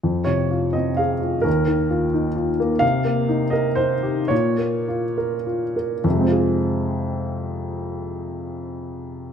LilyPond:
\new Staff \with { instrumentName = "Upright piano" } { \time 3/4 \key f \minor \tempo 4 = 110 << { r8 des''4 ees''8 f''4 | bes'2~ bes'8 r8 | f''4. ees''8 c''4 | des''2~ des''8 r8 |
<f, c aes c' f' aes'>2.~ | <f, c aes c' f' aes'>2. | } \\ { f,8 c8 f'8 c'8 aes'8 f'8 | ees,8 ees8 f'8 ees'8 f'8 bes8 | c8 bes8 ees'8 bes'8 ees'8 g'8 | bes,8 bes8 f'8 bes'8 f'8 bes'8 |
r2. | r2. | } >> }